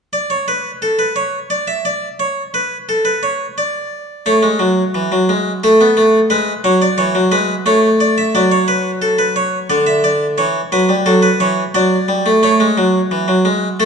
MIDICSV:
0, 0, Header, 1, 2, 480
1, 0, Start_track
1, 0, Tempo, 687285
1, 96, Time_signature, 3, 2, 24, 8
1, 3935, Tempo, 681044
1, 9727, End_track
2, 0, Start_track
2, 0, Title_t, "Harpsichord"
2, 0, Program_c, 0, 6
2, 91, Note_on_c, 0, 74, 61
2, 211, Note_on_c, 0, 73, 56
2, 212, Note_off_c, 0, 74, 0
2, 332, Note_off_c, 0, 73, 0
2, 335, Note_on_c, 0, 71, 61
2, 485, Note_off_c, 0, 71, 0
2, 574, Note_on_c, 0, 69, 59
2, 690, Note_on_c, 0, 71, 57
2, 693, Note_off_c, 0, 69, 0
2, 809, Note_on_c, 0, 73, 59
2, 811, Note_off_c, 0, 71, 0
2, 961, Note_off_c, 0, 73, 0
2, 1049, Note_on_c, 0, 74, 65
2, 1170, Note_on_c, 0, 76, 55
2, 1171, Note_off_c, 0, 74, 0
2, 1292, Note_off_c, 0, 76, 0
2, 1293, Note_on_c, 0, 74, 63
2, 1445, Note_off_c, 0, 74, 0
2, 1533, Note_on_c, 0, 73, 65
2, 1685, Note_off_c, 0, 73, 0
2, 1774, Note_on_c, 0, 71, 64
2, 1926, Note_off_c, 0, 71, 0
2, 2017, Note_on_c, 0, 69, 61
2, 2129, Note_on_c, 0, 71, 59
2, 2136, Note_off_c, 0, 69, 0
2, 2252, Note_off_c, 0, 71, 0
2, 2255, Note_on_c, 0, 73, 66
2, 2406, Note_off_c, 0, 73, 0
2, 2499, Note_on_c, 0, 74, 70
2, 2964, Note_off_c, 0, 74, 0
2, 2975, Note_on_c, 0, 57, 62
2, 2977, Note_on_c, 0, 73, 56
2, 3091, Note_on_c, 0, 56, 66
2, 3093, Note_off_c, 0, 57, 0
2, 3209, Note_on_c, 0, 54, 68
2, 3211, Note_off_c, 0, 56, 0
2, 3360, Note_off_c, 0, 54, 0
2, 3454, Note_on_c, 0, 52, 70
2, 3572, Note_off_c, 0, 52, 0
2, 3575, Note_on_c, 0, 54, 70
2, 3692, Note_off_c, 0, 54, 0
2, 3696, Note_on_c, 0, 56, 67
2, 3844, Note_off_c, 0, 56, 0
2, 3905, Note_off_c, 0, 73, 0
2, 3936, Note_on_c, 0, 69, 62
2, 3937, Note_on_c, 0, 57, 74
2, 4052, Note_off_c, 0, 57, 0
2, 4057, Note_on_c, 0, 59, 68
2, 4172, Note_off_c, 0, 59, 0
2, 4172, Note_on_c, 0, 57, 73
2, 4320, Note_off_c, 0, 57, 0
2, 4397, Note_off_c, 0, 69, 0
2, 4405, Note_on_c, 0, 56, 75
2, 4406, Note_on_c, 0, 71, 61
2, 4554, Note_off_c, 0, 56, 0
2, 4554, Note_off_c, 0, 71, 0
2, 4646, Note_on_c, 0, 54, 76
2, 4646, Note_on_c, 0, 73, 62
2, 4762, Note_off_c, 0, 73, 0
2, 4769, Note_on_c, 0, 74, 62
2, 4794, Note_off_c, 0, 54, 0
2, 4882, Note_on_c, 0, 73, 67
2, 4883, Note_off_c, 0, 74, 0
2, 4884, Note_on_c, 0, 52, 72
2, 5001, Note_off_c, 0, 52, 0
2, 5003, Note_on_c, 0, 54, 71
2, 5032, Note_off_c, 0, 73, 0
2, 5120, Note_off_c, 0, 54, 0
2, 5120, Note_on_c, 0, 56, 75
2, 5121, Note_on_c, 0, 71, 66
2, 5271, Note_off_c, 0, 56, 0
2, 5272, Note_off_c, 0, 71, 0
2, 5362, Note_on_c, 0, 57, 80
2, 5364, Note_on_c, 0, 73, 72
2, 5515, Note_off_c, 0, 73, 0
2, 5606, Note_on_c, 0, 74, 67
2, 5723, Note_off_c, 0, 74, 0
2, 5727, Note_on_c, 0, 76, 67
2, 5831, Note_off_c, 0, 57, 0
2, 5844, Note_off_c, 0, 76, 0
2, 5848, Note_on_c, 0, 54, 69
2, 5848, Note_on_c, 0, 74, 80
2, 5964, Note_off_c, 0, 74, 0
2, 5965, Note_on_c, 0, 73, 79
2, 6081, Note_on_c, 0, 71, 80
2, 6082, Note_off_c, 0, 73, 0
2, 6231, Note_off_c, 0, 71, 0
2, 6319, Note_on_c, 0, 69, 74
2, 6438, Note_on_c, 0, 71, 75
2, 6439, Note_off_c, 0, 69, 0
2, 6557, Note_off_c, 0, 71, 0
2, 6561, Note_on_c, 0, 73, 80
2, 6711, Note_off_c, 0, 73, 0
2, 6776, Note_off_c, 0, 54, 0
2, 6798, Note_on_c, 0, 74, 83
2, 6799, Note_on_c, 0, 50, 69
2, 6917, Note_off_c, 0, 74, 0
2, 6917, Note_on_c, 0, 76, 70
2, 7037, Note_off_c, 0, 76, 0
2, 7040, Note_on_c, 0, 74, 83
2, 7191, Note_off_c, 0, 74, 0
2, 7268, Note_off_c, 0, 50, 0
2, 7278, Note_on_c, 0, 73, 83
2, 7281, Note_on_c, 0, 52, 68
2, 7429, Note_off_c, 0, 73, 0
2, 7431, Note_off_c, 0, 52, 0
2, 7521, Note_on_c, 0, 54, 72
2, 7522, Note_on_c, 0, 71, 75
2, 7640, Note_off_c, 0, 54, 0
2, 7640, Note_on_c, 0, 55, 62
2, 7672, Note_off_c, 0, 71, 0
2, 7758, Note_on_c, 0, 69, 81
2, 7760, Note_off_c, 0, 55, 0
2, 7760, Note_on_c, 0, 54, 67
2, 7875, Note_on_c, 0, 71, 73
2, 7879, Note_off_c, 0, 69, 0
2, 7911, Note_off_c, 0, 54, 0
2, 7998, Note_off_c, 0, 71, 0
2, 8001, Note_on_c, 0, 52, 67
2, 8001, Note_on_c, 0, 73, 79
2, 8151, Note_off_c, 0, 73, 0
2, 8152, Note_off_c, 0, 52, 0
2, 8242, Note_on_c, 0, 74, 85
2, 8243, Note_on_c, 0, 54, 72
2, 8392, Note_off_c, 0, 54, 0
2, 8481, Note_on_c, 0, 55, 72
2, 8600, Note_off_c, 0, 55, 0
2, 8604, Note_on_c, 0, 57, 67
2, 8709, Note_off_c, 0, 74, 0
2, 8716, Note_off_c, 0, 57, 0
2, 8725, Note_on_c, 0, 57, 78
2, 8726, Note_on_c, 0, 73, 68
2, 8842, Note_off_c, 0, 57, 0
2, 8846, Note_on_c, 0, 56, 81
2, 8964, Note_off_c, 0, 56, 0
2, 8968, Note_on_c, 0, 54, 80
2, 9118, Note_off_c, 0, 54, 0
2, 9207, Note_on_c, 0, 52, 79
2, 9324, Note_on_c, 0, 54, 73
2, 9325, Note_off_c, 0, 52, 0
2, 9444, Note_off_c, 0, 54, 0
2, 9444, Note_on_c, 0, 56, 83
2, 9596, Note_off_c, 0, 56, 0
2, 9664, Note_off_c, 0, 73, 0
2, 9688, Note_on_c, 0, 57, 82
2, 9689, Note_on_c, 0, 69, 65
2, 9727, Note_off_c, 0, 57, 0
2, 9727, Note_off_c, 0, 69, 0
2, 9727, End_track
0, 0, End_of_file